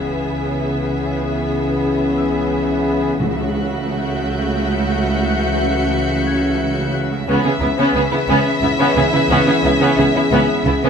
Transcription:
Already playing: C#2 C#3 E3 B3 C#4 G#4 E5 B6, impact
2.17 E6
3.19 C#2 C#3 E3 A3 C#4 F#4 E5 F#6
3.90 G6
4.58 C#7
5.25 E5 F#6
6.27 G#6
6.93 F#6
7.27 C#2 C#3 E3 B3 C#4 G#4 E5
7.44 C#3 B3 G#4
7.61 C#2 C#3 B3 E4
7.77 C#3 B3 C#4
7.94 C#2 C#3 B3 G#4
8.11 C#3 B3 E4
8.28 C#2 C#3 B3 C#4
8.62 C#2 C#3 B3 E4 B5 B6
8.79 C#3 B3 C#4
8.95 C#2 C#3 B3 G#4
9.13 C#3 B3 E4
9.29 C#2 C#3 B3 C#4
9.47 C#3 B3 G#4
9.63 C#2 C#3 B3 E4
9.80 C#3 B3 C#4
9.97 C#2 C#3 B3 G#4
10.15 C#3 B3 E4
10.31 C#2 C#3 B3 C#4
10.65 C#2 C#3 B3 E4
10.83 C#3 B3 C#4

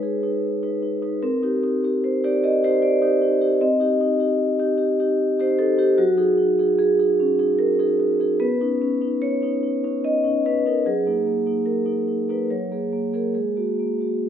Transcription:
Already playing: G#3 D#4 B4 C#5
0.03 G#4
0.23 D#4 B4
0.63 D#4 B4
0.82 D#4
1.02 D#4 B4
1.23 C4 A#4
1.43 D#4 G4
1.63 D#4
1.84 D#4 G4
2.04 C5
2.24 D#4 G4 D5
2.43 G4 D#5
2.63 D#4 G4 C5
2.82 D5
3.02 D#4 G4
3.21 D#4
3.41 D#4 G4
3.61 C4 D#5
3.80 D#4 G4
4.01 D#4
4.20 D#4 G4
4.59 D#4 G4
4.78 G4
5.00 D#4 G4
5.39 D#4 G4 C5
5.59 D#4 A4
5.78 D#4 G4
5.98 F#3 F#4
6.17 D#4 G#4
6.38 D#4
6.59 D#4 G#4
6.79 G#4
6.99 D#4 G#4
7.20 C#4
7.39 D#4 G#4
7.59 A#4
7.79 D#4 G#4
8.00 D#4
8.20 D#4 G#4
8.40 B3 B4
8.61 C#4 D#4
8.82 C#4
9.01 C#4 D#4
9.22 C#5
9.42 C#4 D#4
9.63 D#4
9.84 C#4 D#4
10.04 D#5
10.24 C#4 D#4
10.46 C#4 B4
10.66 C#4 D#4 A#4
10.86 F#3 G#4
11.07 A#3 D#4
11.26 A#3
11.46 A#3 D#4
11.66 A#4
11.86 A#3 D#4
12.08 D#4
12.29 A#3 D#4 B4
12.50 F#3 C#5
12.71 A#3 G#4
12.93 A#3
13.13 A#3 G#4 A#4
13.34 G#3 G#4
13.57 A#3 F#4
13.79 A#3
14.00 A#3 F#4

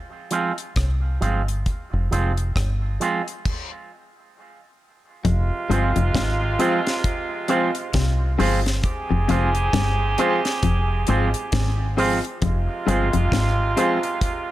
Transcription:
0.31 F3 G#3 C4 F4, closed hi-hat
0.58 closed hi-hat
0.76 C2, kick, cross-stick, closed hi-hat
1.21 G1 F3 G#3 C4 F4, closed hi-hat
1.48 closed hi-hat
1.66 kick, closed hi-hat
1.93 F1
2.11 F1 F3 G#3 C4 F4, closed hi-hat
2.37 closed hi-hat
2.56 G1, kick, cross-stick, closed hi-hat
3.00 F3 G#3 C4 F4, closed hi-hat
3.28 closed hi-hat
3.45 kick, crash
5.24 F1 F2 C3 G#3 F4, kick, closed hi-hat
5.70 G1 G2 F3 G#3 C4 F4 G#4 C5, closed hi-hat
5.96 F1 F2, closed hi-hat
6.15 G#1 G#2, kick, snare, closed hi-hat
6.59 F3 G#3 C4 F4 G#4 C5, closed hi-hat
6.85 muted clean electric guitar stroke, snare, closed hi-hat
7.04 kick, closed hi-hat
7.48 F3 G#3 C4 F4 G#4 C5, closed hi-hat
7.75 closed hi-hat
7.93 C2 C3, kick, snare, closed hi-hat
8.38 G1 G2 F3 G#3 C4 F4 G#4 C5, open hi-hat
8.66 snare, closed hi-hat
8.83 C3 G4 G#4, kick, closed hi-hat
9.11 F1 F2
9.28 F1 F2 F3 G#3 C4 F4 G#4 C5, closed hi-hat
9.55 closed hi-hat
9.73 G1 G2, kick, snare, closed hi-hat
10.18 F3 G#3 C4 F4 G#4 C5, closed hi-hat
10.45 snare, closed hi-hat
10.63 F1 F2, kick, closed hi-hat
11.07 G#1 G#2 F3 G#3 C4 F4 G#4 C5, closed hi-hat
11.34 closed hi-hat
11.52 G#1 G#2, kick, snare, closed hi-hat
11.97 F3 G#3 C4 F4 G#4 C5, open hi-hat
12.25 closed hi-hat
12.42 F1 F2 C3 G#3 F4, kick, closed hi-hat
12.86 G1 G2 F3 G#3 C4 F4 G#4 C5, closed hi-hat
13.13 F1 F2, closed hi-hat
13.32 G#1 G#2, kick, snare, closed hi-hat
13.76 F3 G#3 C4 F4 G#4 C5, closed hi-hat
14.03 muted clean electric guitar stroke, closed hi-hat
14.21 kick, closed hi-hat

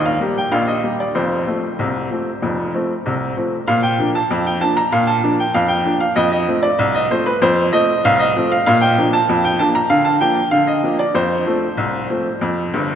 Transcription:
Already playing: D#2 D#3
0.06 F5
0.21 G3 A#3 G4
0.38 G5
0.52 A#1 A#2 F5
0.67 D#5
0.84 G3 A#3 G4
1.00 D5
1.15 F1 F2 C5
1.47 F3 A3 C4
1.79 C2 C3
2.11 F3 A3 C4
2.42 F1 F2
2.74 F3 A3 C4
3.06 C2 C3
3.37 F3 A3 C4
3.68 A#2 F5
3.83 G5
3.99 F3 A#3 D4
4.15 A5
4.31 F2
4.46 G5
4.61 F3 A#3 D4 A5
4.77 A#5
4.92 A#2 F5
5.07 A5
5.23 F3 A#3 D4
5.40 G5
5.54 F2 F5
5.68 G5
5.85 F3 A#3 D4
6.00 F5
6.16 F2 D#5
6.32 D#5
6.48 F3 A3 C4
6.63 D5
6.79 C2
6.95 D#5
7.11 F3 A3 C4 C5
7.26 B4
7.42 F2 C5
7.73 F3 A3 C4 D#5
8.05 C2 F5
8.20 D#5
8.36 F3 A3 C4
8.52 F5
8.66 A#2 F5
8.81 G5
8.98 F3 A#3 D4
9.13 A5
9.29 F2
9.44 G5
9.59 F3 A#3 D4 A5
9.75 A#5
9.90 D3 F5
10.05 A5
10.21 F3 A#3 D4 G5
10.51 D3 F5
10.67 D#5
10.83 F3 A#3 D4
10.99 D5
11.15 F2 C5
11.46 F3 A3 C4
11.77 C2
12.10 F3 A3 C4
12.41 F2
12.74 G1 G2

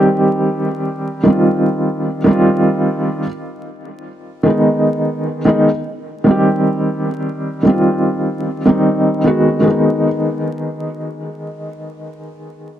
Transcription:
Already playing: D#3 G3 C4 G4
1.23 D#3 G3
1.28 C4 F4
2.24 D#3 G3
2.28 C4 F4
4.43 D#3 G#3
4.48 B3 D#4
5.45 D#3 G#3 B3 D#4
6.24 D#3 G3
6.29 C4 G4
7.63 D#3 G3
7.67 C4 F4
8.66 D#3 G3 C4 D#4
9.24 D#3 G#3 B3 F#4
9.60 D#3 G#3
9.67 B3 D#4

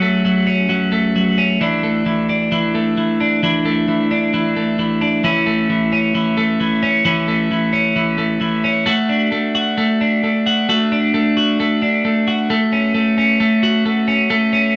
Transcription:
Already playing: F#3 C#4
0.02 A3
0.25 F#3
0.47 C#4
0.69 F#3
0.92 A3
1.16 F#3
1.38 C#4
1.61 E3 D4
1.83 A3
2.06 E3
2.29 D4
2.52 E3
2.75 A3
2.97 E3
3.21 D4
3.43 E3 D4
3.65 A3
3.88 E3
4.11 D4
4.34 E3
4.56 A3
4.79 E3
5.01 D4
5.24 E3 C#4
5.47 A3
5.70 E3
5.93 C#4
6.15 E3
6.37 A3
6.60 E3
6.83 C#4
7.05 E3 C#4
7.28 A3
7.51 E3
7.73 C#4
7.96 E3
8.18 A3
8.41 E3
8.64 C#4
8.86 A3 F#4
9.09 D4
9.32 A3
9.55 F#4
9.78 A3
10.01 D4
10.24 A3
10.46 F#4
10.69 A3 F#4
10.92 D4
11.14 A3
11.37 F#4
11.60 A3
11.82 D4
12.05 A3
12.28 F#4
12.50 A3
12.73 C#4
12.95 A3
13.18 C#4
13.40 A3
13.63 F#4
13.86 A3
14.08 C#4
14.30 A3
14.53 C#4

